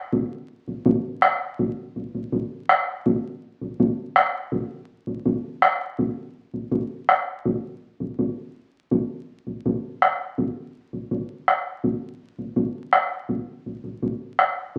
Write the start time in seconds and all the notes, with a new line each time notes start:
0.12 bombo low
0.68 bombo low
0.86 bombo low
1.22 bombo rim
1.59 bombo low
1.96 bombo low
2.15 bombo low
2.32 bombo low
2.69 bombo rim
3.06 bombo low
3.61 bombo low
3.80 bombo low
4.16 bombo rim
4.52 bombo low
5.07 bombo low
5.25 bombo low
5.62 bombo rim
5.99 bombo low
6.54 bombo low
6.71 bombo low
7.09 bombo rim
7.45 bombo low
8.00 bombo low
8.19 bombo low
8.91 bombo low
9.47 bombo low
9.66 bombo low
10.02 bombo rim
10.38 bombo low
10.93 bombo low
11.11 bombo low
11.48 bombo rim
11.84 bombo low
12.38 bombo low
12.56 bombo low
12.93 bombo rim
13.29 bombo low
13.66 bombo low
13.84 bombo low
14.02 bombo low
14.39 bombo rim